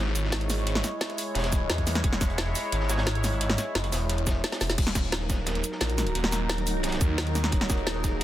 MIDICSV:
0, 0, Header, 1, 5, 480
1, 0, Start_track
1, 0, Tempo, 342857
1, 934, Time_signature, 4, 2, 24, 8
1, 11532, End_track
2, 0, Start_track
2, 0, Title_t, "Ambient pad"
2, 0, Program_c, 0, 92
2, 6692, Note_on_c, 0, 63, 69
2, 6891, Note_on_c, 0, 66, 83
2, 7074, Note_on_c, 0, 78, 79
2, 7287, Note_on_c, 0, 70, 80
2, 10727, Note_on_c, 0, 80, 78
2, 10867, Note_off_c, 0, 78, 0
2, 11532, Note_off_c, 0, 63, 0
2, 11532, Note_off_c, 0, 66, 0
2, 11532, Note_off_c, 0, 70, 0
2, 11532, Note_off_c, 0, 80, 0
2, 11532, End_track
3, 0, Start_track
3, 0, Title_t, "Analog synth pad"
3, 0, Program_c, 1, 89
3, 0, Note_on_c, 1, 56, 81
3, 0, Note_on_c, 1, 64, 74
3, 0, Note_on_c, 1, 73, 91
3, 6638, Note_off_c, 1, 64, 0
3, 6638, Note_off_c, 1, 73, 0
3, 6639, Note_off_c, 1, 56, 0
3, 6693, Note_on_c, 1, 63, 73
3, 6694, Note_on_c, 1, 54, 80
3, 6694, Note_on_c, 1, 70, 85
3, 10496, Note_off_c, 1, 70, 0
3, 10534, Note_on_c, 1, 68, 85
3, 11532, Note_off_c, 1, 54, 0
3, 11532, Note_off_c, 1, 63, 0
3, 11532, Note_off_c, 1, 68, 0
3, 11532, End_track
4, 0, Start_track
4, 0, Title_t, "Detuned saw bass"
4, 0, Program_c, 2, 39
4, 0, Note_on_c, 2, 32, 87
4, 1154, Note_off_c, 2, 32, 0
4, 1895, Note_on_c, 2, 28, 92
4, 2356, Note_off_c, 2, 28, 0
4, 2375, Note_on_c, 2, 40, 97
4, 2835, Note_off_c, 2, 40, 0
4, 2855, Note_on_c, 2, 28, 101
4, 3555, Note_off_c, 2, 28, 0
4, 3814, Note_on_c, 2, 32, 93
4, 4995, Note_off_c, 2, 32, 0
4, 5253, Note_on_c, 2, 30, 100
4, 5474, Note_off_c, 2, 30, 0
4, 5494, Note_on_c, 2, 28, 97
4, 6195, Note_off_c, 2, 28, 0
4, 6454, Note_on_c, 2, 28, 105
4, 6675, Note_off_c, 2, 28, 0
4, 6693, Note_on_c, 2, 27, 98
4, 6915, Note_off_c, 2, 27, 0
4, 6933, Note_on_c, 2, 27, 102
4, 7154, Note_off_c, 2, 27, 0
4, 7174, Note_on_c, 2, 27, 98
4, 7875, Note_off_c, 2, 27, 0
4, 8134, Note_on_c, 2, 34, 98
4, 8595, Note_off_c, 2, 34, 0
4, 8614, Note_on_c, 2, 27, 97
4, 9795, Note_off_c, 2, 27, 0
4, 9814, Note_on_c, 2, 39, 99
4, 10515, Note_off_c, 2, 39, 0
4, 10535, Note_on_c, 2, 27, 92
4, 10755, Note_off_c, 2, 27, 0
4, 10774, Note_on_c, 2, 27, 97
4, 10995, Note_off_c, 2, 27, 0
4, 11013, Note_on_c, 2, 27, 98
4, 11532, Note_off_c, 2, 27, 0
4, 11532, End_track
5, 0, Start_track
5, 0, Title_t, "Drums"
5, 95, Note_on_c, 9, 38, 40
5, 215, Note_on_c, 9, 42, 68
5, 215, Note_on_c, 9, 82, 63
5, 221, Note_off_c, 9, 42, 0
5, 221, Note_on_c, 9, 42, 69
5, 235, Note_off_c, 9, 38, 0
5, 343, Note_on_c, 9, 38, 41
5, 355, Note_off_c, 9, 82, 0
5, 361, Note_off_c, 9, 42, 0
5, 447, Note_on_c, 9, 42, 91
5, 453, Note_off_c, 9, 38, 0
5, 453, Note_on_c, 9, 38, 118
5, 455, Note_off_c, 9, 38, 0
5, 455, Note_off_c, 9, 42, 0
5, 455, Note_on_c, 9, 38, 122
5, 455, Note_on_c, 9, 42, 90
5, 576, Note_off_c, 9, 42, 0
5, 576, Note_on_c, 9, 42, 38
5, 595, Note_off_c, 9, 38, 0
5, 695, Note_on_c, 9, 40, 36
5, 695, Note_on_c, 9, 46, 86
5, 695, Note_on_c, 9, 82, 62
5, 699, Note_off_c, 9, 42, 0
5, 699, Note_on_c, 9, 42, 70
5, 811, Note_off_c, 9, 42, 0
5, 811, Note_on_c, 9, 42, 44
5, 835, Note_off_c, 9, 40, 0
5, 835, Note_off_c, 9, 46, 0
5, 835, Note_off_c, 9, 82, 0
5, 933, Note_off_c, 9, 42, 0
5, 933, Note_on_c, 9, 42, 99
5, 936, Note_off_c, 9, 42, 0
5, 936, Note_on_c, 9, 42, 96
5, 1055, Note_on_c, 9, 38, 47
5, 1056, Note_off_c, 9, 38, 0
5, 1056, Note_on_c, 9, 38, 37
5, 1056, Note_on_c, 9, 40, 54
5, 1076, Note_off_c, 9, 42, 0
5, 1174, Note_on_c, 9, 42, 70
5, 1175, Note_off_c, 9, 40, 0
5, 1175, Note_off_c, 9, 42, 0
5, 1175, Note_on_c, 9, 40, 35
5, 1175, Note_on_c, 9, 42, 66
5, 1175, Note_on_c, 9, 82, 66
5, 1196, Note_off_c, 9, 38, 0
5, 1315, Note_off_c, 9, 40, 0
5, 1315, Note_off_c, 9, 42, 0
5, 1315, Note_off_c, 9, 82, 0
5, 1412, Note_on_c, 9, 38, 116
5, 1412, Note_on_c, 9, 42, 90
5, 1415, Note_off_c, 9, 38, 0
5, 1415, Note_off_c, 9, 42, 0
5, 1415, Note_on_c, 9, 38, 119
5, 1415, Note_on_c, 9, 42, 93
5, 1536, Note_off_c, 9, 42, 0
5, 1536, Note_on_c, 9, 42, 35
5, 1555, Note_off_c, 9, 38, 0
5, 1656, Note_on_c, 9, 46, 79
5, 1656, Note_on_c, 9, 82, 64
5, 1663, Note_off_c, 9, 42, 0
5, 1663, Note_on_c, 9, 42, 72
5, 1796, Note_off_c, 9, 46, 0
5, 1796, Note_off_c, 9, 82, 0
5, 1803, Note_off_c, 9, 42, 0
5, 1886, Note_on_c, 9, 38, 92
5, 1893, Note_on_c, 9, 42, 72
5, 1894, Note_off_c, 9, 42, 0
5, 1894, Note_on_c, 9, 42, 87
5, 1950, Note_off_c, 9, 38, 0
5, 1950, Note_off_c, 9, 42, 0
5, 1950, Note_on_c, 9, 38, 95
5, 1950, Note_on_c, 9, 42, 64
5, 2011, Note_off_c, 9, 38, 0
5, 2011, Note_on_c, 9, 38, 96
5, 2015, Note_off_c, 9, 42, 0
5, 2015, Note_on_c, 9, 42, 79
5, 2134, Note_off_c, 9, 42, 0
5, 2134, Note_on_c, 9, 42, 70
5, 2134, Note_on_c, 9, 82, 67
5, 2135, Note_on_c, 9, 36, 98
5, 2143, Note_off_c, 9, 42, 0
5, 2143, Note_on_c, 9, 42, 71
5, 2151, Note_off_c, 9, 38, 0
5, 2274, Note_off_c, 9, 82, 0
5, 2275, Note_off_c, 9, 36, 0
5, 2283, Note_off_c, 9, 42, 0
5, 2373, Note_on_c, 9, 42, 83
5, 2375, Note_off_c, 9, 42, 0
5, 2375, Note_on_c, 9, 38, 127
5, 2375, Note_on_c, 9, 42, 95
5, 2495, Note_off_c, 9, 42, 0
5, 2495, Note_on_c, 9, 36, 59
5, 2495, Note_on_c, 9, 42, 38
5, 2515, Note_off_c, 9, 38, 0
5, 2615, Note_on_c, 9, 40, 35
5, 2615, Note_on_c, 9, 46, 83
5, 2615, Note_on_c, 9, 82, 66
5, 2620, Note_off_c, 9, 42, 0
5, 2620, Note_on_c, 9, 42, 70
5, 2635, Note_off_c, 9, 36, 0
5, 2735, Note_off_c, 9, 40, 0
5, 2735, Note_off_c, 9, 42, 0
5, 2735, Note_off_c, 9, 82, 0
5, 2735, Note_on_c, 9, 40, 55
5, 2735, Note_on_c, 9, 42, 39
5, 2735, Note_on_c, 9, 82, 31
5, 2755, Note_off_c, 9, 46, 0
5, 2854, Note_off_c, 9, 42, 0
5, 2854, Note_on_c, 9, 42, 101
5, 2855, Note_off_c, 9, 42, 0
5, 2855, Note_on_c, 9, 36, 120
5, 2855, Note_on_c, 9, 42, 98
5, 2875, Note_off_c, 9, 40, 0
5, 2875, Note_off_c, 9, 82, 0
5, 2975, Note_on_c, 9, 40, 54
5, 2995, Note_off_c, 9, 36, 0
5, 2995, Note_off_c, 9, 42, 0
5, 3091, Note_on_c, 9, 42, 69
5, 3095, Note_off_c, 9, 40, 0
5, 3095, Note_off_c, 9, 42, 0
5, 3095, Note_on_c, 9, 36, 96
5, 3095, Note_on_c, 9, 40, 36
5, 3095, Note_on_c, 9, 42, 70
5, 3095, Note_on_c, 9, 82, 65
5, 3215, Note_off_c, 9, 42, 0
5, 3215, Note_on_c, 9, 42, 44
5, 3235, Note_off_c, 9, 36, 0
5, 3235, Note_off_c, 9, 40, 0
5, 3235, Note_off_c, 9, 82, 0
5, 3330, Note_on_c, 9, 38, 120
5, 3335, Note_off_c, 9, 38, 0
5, 3335, Note_off_c, 9, 42, 0
5, 3335, Note_on_c, 9, 38, 112
5, 3335, Note_on_c, 9, 42, 95
5, 3338, Note_off_c, 9, 42, 0
5, 3338, Note_on_c, 9, 42, 99
5, 3475, Note_off_c, 9, 38, 0
5, 3478, Note_off_c, 9, 42, 0
5, 3575, Note_on_c, 9, 46, 78
5, 3575, Note_on_c, 9, 82, 64
5, 3581, Note_on_c, 9, 38, 46
5, 3582, Note_on_c, 9, 42, 73
5, 3715, Note_off_c, 9, 46, 0
5, 3715, Note_off_c, 9, 82, 0
5, 3721, Note_off_c, 9, 38, 0
5, 3722, Note_off_c, 9, 42, 0
5, 3812, Note_on_c, 9, 42, 88
5, 3814, Note_off_c, 9, 42, 0
5, 3814, Note_on_c, 9, 42, 96
5, 3922, Note_on_c, 9, 38, 40
5, 3954, Note_off_c, 9, 42, 0
5, 4052, Note_off_c, 9, 38, 0
5, 4052, Note_on_c, 9, 38, 102
5, 4054, Note_on_c, 9, 42, 73
5, 4054, Note_on_c, 9, 82, 67
5, 4062, Note_off_c, 9, 42, 0
5, 4062, Note_on_c, 9, 42, 79
5, 4171, Note_off_c, 9, 38, 0
5, 4171, Note_on_c, 9, 38, 111
5, 4181, Note_off_c, 9, 42, 0
5, 4181, Note_on_c, 9, 42, 75
5, 4194, Note_off_c, 9, 82, 0
5, 4282, Note_off_c, 9, 38, 0
5, 4282, Note_on_c, 9, 38, 102
5, 4294, Note_off_c, 9, 38, 0
5, 4294, Note_off_c, 9, 42, 0
5, 4294, Note_on_c, 9, 38, 118
5, 4294, Note_on_c, 9, 42, 101
5, 4302, Note_off_c, 9, 42, 0
5, 4302, Note_on_c, 9, 42, 73
5, 4415, Note_off_c, 9, 42, 0
5, 4415, Note_on_c, 9, 42, 39
5, 4434, Note_off_c, 9, 38, 0
5, 4535, Note_off_c, 9, 42, 0
5, 4535, Note_on_c, 9, 40, 36
5, 4535, Note_on_c, 9, 42, 67
5, 4535, Note_on_c, 9, 46, 80
5, 4535, Note_on_c, 9, 82, 67
5, 4653, Note_off_c, 9, 42, 0
5, 4653, Note_on_c, 9, 42, 42
5, 4675, Note_off_c, 9, 40, 0
5, 4675, Note_off_c, 9, 46, 0
5, 4675, Note_off_c, 9, 82, 0
5, 4773, Note_off_c, 9, 42, 0
5, 4773, Note_on_c, 9, 42, 99
5, 4774, Note_off_c, 9, 42, 0
5, 4774, Note_on_c, 9, 42, 96
5, 4889, Note_on_c, 9, 38, 47
5, 4894, Note_off_c, 9, 38, 0
5, 4894, Note_on_c, 9, 38, 36
5, 4894, Note_on_c, 9, 40, 57
5, 4914, Note_off_c, 9, 42, 0
5, 5014, Note_off_c, 9, 40, 0
5, 5014, Note_on_c, 9, 40, 35
5, 5014, Note_on_c, 9, 42, 71
5, 5014, Note_on_c, 9, 82, 62
5, 5022, Note_off_c, 9, 42, 0
5, 5022, Note_on_c, 9, 42, 81
5, 5034, Note_off_c, 9, 38, 0
5, 5154, Note_off_c, 9, 40, 0
5, 5154, Note_off_c, 9, 82, 0
5, 5162, Note_off_c, 9, 42, 0
5, 5253, Note_on_c, 9, 38, 113
5, 5253, Note_on_c, 9, 42, 99
5, 5257, Note_off_c, 9, 42, 0
5, 5257, Note_on_c, 9, 42, 64
5, 5371, Note_off_c, 9, 42, 0
5, 5371, Note_on_c, 9, 42, 79
5, 5374, Note_off_c, 9, 42, 0
5, 5374, Note_on_c, 9, 42, 38
5, 5393, Note_off_c, 9, 38, 0
5, 5492, Note_on_c, 9, 38, 93
5, 5494, Note_on_c, 9, 46, 79
5, 5494, Note_on_c, 9, 82, 61
5, 5500, Note_off_c, 9, 42, 0
5, 5500, Note_on_c, 9, 42, 79
5, 5632, Note_off_c, 9, 38, 0
5, 5634, Note_off_c, 9, 46, 0
5, 5634, Note_off_c, 9, 82, 0
5, 5640, Note_off_c, 9, 42, 0
5, 5729, Note_on_c, 9, 38, 51
5, 5732, Note_on_c, 9, 42, 63
5, 5734, Note_off_c, 9, 42, 0
5, 5734, Note_on_c, 9, 42, 98
5, 5854, Note_off_c, 9, 42, 0
5, 5854, Note_on_c, 9, 42, 39
5, 5869, Note_off_c, 9, 38, 0
5, 5974, Note_on_c, 9, 36, 95
5, 5975, Note_off_c, 9, 42, 0
5, 5975, Note_on_c, 9, 42, 76
5, 5975, Note_on_c, 9, 82, 65
5, 5977, Note_off_c, 9, 42, 0
5, 5977, Note_on_c, 9, 42, 88
5, 5979, Note_on_c, 9, 38, 99
5, 6114, Note_off_c, 9, 36, 0
5, 6115, Note_off_c, 9, 82, 0
5, 6117, Note_off_c, 9, 42, 0
5, 6119, Note_off_c, 9, 38, 0
5, 6213, Note_on_c, 9, 42, 62
5, 6214, Note_off_c, 9, 42, 0
5, 6214, Note_on_c, 9, 38, 119
5, 6214, Note_on_c, 9, 42, 99
5, 6329, Note_off_c, 9, 42, 0
5, 6329, Note_on_c, 9, 42, 77
5, 6332, Note_off_c, 9, 38, 0
5, 6332, Note_on_c, 9, 38, 112
5, 6334, Note_off_c, 9, 38, 0
5, 6334, Note_off_c, 9, 42, 0
5, 6334, Note_on_c, 9, 38, 55
5, 6334, Note_on_c, 9, 42, 41
5, 6454, Note_off_c, 9, 38, 0
5, 6454, Note_on_c, 9, 38, 85
5, 6454, Note_on_c, 9, 46, 80
5, 6454, Note_on_c, 9, 82, 64
5, 6474, Note_off_c, 9, 42, 0
5, 6574, Note_off_c, 9, 38, 0
5, 6574, Note_off_c, 9, 82, 0
5, 6574, Note_on_c, 9, 38, 84
5, 6574, Note_on_c, 9, 42, 40
5, 6574, Note_on_c, 9, 82, 30
5, 6585, Note_off_c, 9, 42, 0
5, 6585, Note_on_c, 9, 42, 64
5, 6594, Note_off_c, 9, 46, 0
5, 6693, Note_off_c, 9, 42, 0
5, 6693, Note_on_c, 9, 42, 98
5, 6693, Note_on_c, 9, 49, 110
5, 6694, Note_on_c, 9, 36, 126
5, 6700, Note_off_c, 9, 42, 0
5, 6700, Note_on_c, 9, 42, 93
5, 6714, Note_off_c, 9, 38, 0
5, 6714, Note_off_c, 9, 82, 0
5, 6814, Note_on_c, 9, 40, 59
5, 6833, Note_off_c, 9, 49, 0
5, 6834, Note_off_c, 9, 36, 0
5, 6840, Note_off_c, 9, 42, 0
5, 6934, Note_off_c, 9, 40, 0
5, 6934, Note_on_c, 9, 36, 101
5, 6934, Note_on_c, 9, 40, 39
5, 6934, Note_on_c, 9, 42, 72
5, 6934, Note_on_c, 9, 82, 60
5, 6937, Note_off_c, 9, 42, 0
5, 6937, Note_on_c, 9, 42, 76
5, 7063, Note_off_c, 9, 42, 0
5, 7063, Note_on_c, 9, 42, 51
5, 7074, Note_off_c, 9, 36, 0
5, 7074, Note_off_c, 9, 40, 0
5, 7074, Note_off_c, 9, 82, 0
5, 7169, Note_off_c, 9, 42, 0
5, 7169, Note_on_c, 9, 42, 85
5, 7173, Note_off_c, 9, 42, 0
5, 7173, Note_on_c, 9, 38, 120
5, 7173, Note_on_c, 9, 42, 99
5, 7181, Note_off_c, 9, 38, 0
5, 7181, Note_on_c, 9, 38, 127
5, 7313, Note_off_c, 9, 42, 0
5, 7321, Note_off_c, 9, 38, 0
5, 7414, Note_on_c, 9, 36, 63
5, 7414, Note_on_c, 9, 42, 73
5, 7414, Note_on_c, 9, 82, 59
5, 7417, Note_on_c, 9, 38, 106
5, 7554, Note_off_c, 9, 36, 0
5, 7554, Note_off_c, 9, 42, 0
5, 7554, Note_off_c, 9, 82, 0
5, 7557, Note_off_c, 9, 38, 0
5, 7650, Note_on_c, 9, 42, 86
5, 7652, Note_on_c, 9, 38, 104
5, 7655, Note_off_c, 9, 42, 0
5, 7655, Note_on_c, 9, 42, 94
5, 7655, Note_on_c, 9, 82, 28
5, 7775, Note_off_c, 9, 42, 0
5, 7775, Note_on_c, 9, 42, 39
5, 7779, Note_off_c, 9, 38, 0
5, 7779, Note_on_c, 9, 38, 40
5, 7795, Note_off_c, 9, 82, 0
5, 7889, Note_off_c, 9, 42, 0
5, 7889, Note_on_c, 9, 42, 67
5, 7894, Note_off_c, 9, 42, 0
5, 7894, Note_on_c, 9, 42, 74
5, 7894, Note_on_c, 9, 82, 62
5, 7919, Note_off_c, 9, 38, 0
5, 8004, Note_on_c, 9, 38, 39
5, 8034, Note_off_c, 9, 42, 0
5, 8034, Note_off_c, 9, 82, 0
5, 8128, Note_on_c, 9, 42, 91
5, 8134, Note_off_c, 9, 38, 0
5, 8134, Note_off_c, 9, 42, 0
5, 8134, Note_on_c, 9, 38, 121
5, 8134, Note_on_c, 9, 42, 99
5, 8138, Note_off_c, 9, 38, 0
5, 8138, Note_on_c, 9, 38, 115
5, 8254, Note_off_c, 9, 42, 0
5, 8254, Note_on_c, 9, 42, 42
5, 8278, Note_off_c, 9, 38, 0
5, 8373, Note_off_c, 9, 42, 0
5, 8373, Note_on_c, 9, 40, 39
5, 8373, Note_on_c, 9, 42, 73
5, 8373, Note_on_c, 9, 82, 61
5, 8387, Note_off_c, 9, 42, 0
5, 8387, Note_on_c, 9, 42, 69
5, 8488, Note_off_c, 9, 42, 0
5, 8488, Note_on_c, 9, 42, 45
5, 8493, Note_off_c, 9, 42, 0
5, 8493, Note_on_c, 9, 42, 40
5, 8513, Note_off_c, 9, 40, 0
5, 8513, Note_off_c, 9, 82, 0
5, 8612, Note_off_c, 9, 42, 0
5, 8612, Note_on_c, 9, 42, 85
5, 8613, Note_off_c, 9, 42, 0
5, 8613, Note_on_c, 9, 42, 97
5, 8733, Note_on_c, 9, 38, 48
5, 8734, Note_off_c, 9, 38, 0
5, 8734, Note_on_c, 9, 38, 39
5, 8734, Note_on_c, 9, 40, 61
5, 8753, Note_off_c, 9, 42, 0
5, 8853, Note_off_c, 9, 40, 0
5, 8853, Note_on_c, 9, 40, 39
5, 8853, Note_on_c, 9, 42, 70
5, 8853, Note_on_c, 9, 82, 59
5, 8856, Note_off_c, 9, 42, 0
5, 8856, Note_on_c, 9, 42, 73
5, 8874, Note_off_c, 9, 38, 0
5, 8993, Note_off_c, 9, 40, 0
5, 8993, Note_off_c, 9, 82, 0
5, 8996, Note_off_c, 9, 42, 0
5, 9092, Note_on_c, 9, 38, 111
5, 9094, Note_off_c, 9, 38, 0
5, 9094, Note_on_c, 9, 38, 122
5, 9094, Note_on_c, 9, 42, 94
5, 9102, Note_off_c, 9, 42, 0
5, 9102, Note_on_c, 9, 42, 93
5, 9215, Note_off_c, 9, 42, 0
5, 9215, Note_on_c, 9, 42, 36
5, 9234, Note_off_c, 9, 38, 0
5, 9334, Note_on_c, 9, 46, 80
5, 9334, Note_on_c, 9, 82, 59
5, 9337, Note_off_c, 9, 42, 0
5, 9337, Note_on_c, 9, 42, 68
5, 9474, Note_off_c, 9, 46, 0
5, 9474, Note_off_c, 9, 82, 0
5, 9477, Note_off_c, 9, 42, 0
5, 9564, Note_on_c, 9, 42, 72
5, 9570, Note_on_c, 9, 38, 99
5, 9574, Note_off_c, 9, 42, 0
5, 9574, Note_on_c, 9, 42, 94
5, 9574, Note_on_c, 9, 82, 26
5, 9634, Note_off_c, 9, 38, 0
5, 9634, Note_on_c, 9, 38, 88
5, 9639, Note_off_c, 9, 42, 0
5, 9639, Note_on_c, 9, 42, 74
5, 9692, Note_off_c, 9, 42, 0
5, 9692, Note_on_c, 9, 42, 83
5, 9694, Note_off_c, 9, 42, 0
5, 9694, Note_on_c, 9, 42, 38
5, 9705, Note_off_c, 9, 38, 0
5, 9705, Note_on_c, 9, 38, 105
5, 9714, Note_off_c, 9, 82, 0
5, 9807, Note_off_c, 9, 42, 0
5, 9807, Note_on_c, 9, 42, 69
5, 9814, Note_off_c, 9, 42, 0
5, 9814, Note_on_c, 9, 42, 72
5, 9814, Note_on_c, 9, 82, 62
5, 9815, Note_on_c, 9, 36, 109
5, 9845, Note_off_c, 9, 38, 0
5, 9954, Note_off_c, 9, 42, 0
5, 9954, Note_off_c, 9, 82, 0
5, 9955, Note_off_c, 9, 36, 0
5, 10052, Note_on_c, 9, 38, 118
5, 10053, Note_off_c, 9, 38, 0
5, 10053, Note_on_c, 9, 38, 127
5, 10053, Note_on_c, 9, 42, 102
5, 10060, Note_off_c, 9, 42, 0
5, 10060, Note_on_c, 9, 42, 88
5, 10174, Note_off_c, 9, 42, 0
5, 10174, Note_on_c, 9, 42, 40
5, 10193, Note_off_c, 9, 38, 0
5, 10294, Note_off_c, 9, 42, 0
5, 10294, Note_on_c, 9, 40, 41
5, 10294, Note_on_c, 9, 42, 69
5, 10294, Note_on_c, 9, 82, 61
5, 10414, Note_off_c, 9, 40, 0
5, 10414, Note_off_c, 9, 42, 0
5, 10414, Note_on_c, 9, 40, 60
5, 10414, Note_on_c, 9, 42, 40
5, 10434, Note_off_c, 9, 82, 0
5, 10526, Note_off_c, 9, 42, 0
5, 10526, Note_on_c, 9, 42, 100
5, 10534, Note_off_c, 9, 42, 0
5, 10534, Note_on_c, 9, 36, 127
5, 10534, Note_on_c, 9, 42, 88
5, 10554, Note_off_c, 9, 40, 0
5, 10655, Note_on_c, 9, 40, 60
5, 10674, Note_off_c, 9, 36, 0
5, 10674, Note_off_c, 9, 42, 0
5, 10775, Note_off_c, 9, 40, 0
5, 10775, Note_on_c, 9, 36, 107
5, 10775, Note_on_c, 9, 40, 38
5, 10775, Note_on_c, 9, 42, 66
5, 10775, Note_on_c, 9, 82, 59
5, 10778, Note_off_c, 9, 42, 0
5, 10778, Note_on_c, 9, 42, 78
5, 10882, Note_off_c, 9, 42, 0
5, 10882, Note_on_c, 9, 42, 46
5, 10915, Note_off_c, 9, 36, 0
5, 10915, Note_off_c, 9, 40, 0
5, 10915, Note_off_c, 9, 82, 0
5, 11012, Note_on_c, 9, 38, 125
5, 11014, Note_off_c, 9, 42, 0
5, 11014, Note_on_c, 9, 42, 86
5, 11015, Note_off_c, 9, 38, 0
5, 11015, Note_off_c, 9, 42, 0
5, 11015, Note_on_c, 9, 38, 127
5, 11015, Note_on_c, 9, 42, 93
5, 11155, Note_off_c, 9, 38, 0
5, 11155, Note_off_c, 9, 42, 0
5, 11254, Note_on_c, 9, 36, 68
5, 11254, Note_on_c, 9, 38, 51
5, 11255, Note_on_c, 9, 42, 67
5, 11255, Note_on_c, 9, 82, 56
5, 11256, Note_off_c, 9, 42, 0
5, 11256, Note_on_c, 9, 42, 72
5, 11394, Note_off_c, 9, 36, 0
5, 11394, Note_off_c, 9, 38, 0
5, 11395, Note_off_c, 9, 82, 0
5, 11396, Note_off_c, 9, 42, 0
5, 11532, End_track
0, 0, End_of_file